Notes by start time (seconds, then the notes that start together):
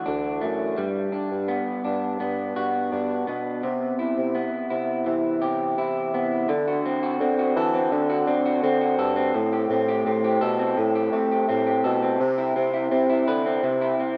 Already playing: D3 E3 A3 F#4
0.06 D2 D4
0.41 F#2 A3
0.77 G2 G3
1.12 D4
1.31 G2
1.48 B3
1.84 G2 D4
2.20 G2 B3
2.56 G2 F#4
2.92 G2 D4
3.27 B2 B3
3.63 C3
3.99 E4
4.17 C3
4.35 B3
4.70 C3 E4
5.06 C3 E3
5.42 C3 G4
5.78 C3 E4
6.14 C3 B3
6.49 D3
6.68 F#4
6.86 C4
7.03 F#4
7.20 D3 C4
7.39 F#4
7.56 E3 A4
7.74 C4
7.92 D3
8.10 F#4
8.27 C4 D4
8.46 F#4
8.63 D3 C4
8.81 F#4
8.99 G2 A4
9.16 C4
9.34 A2
9.52 G4
9.70 A2 C4
9.88 G4
10.06 A2 C4
10.24 G4
10.41 B2 A4
10.59 C4
10.77 A2
10.95 G4
11.13 A3 C4
11.32 G4
11.49 A2 C4
11.67 G4
11.84 B2 A4
12.02 C4
12.20 C3
12.38 E4
12.56 C3 C4
12.74 E4
12.91 C3 C4
13.09 E4
13.27 D3 B4
13.46 C4
13.63 C3
13.81 E4
14.00 C4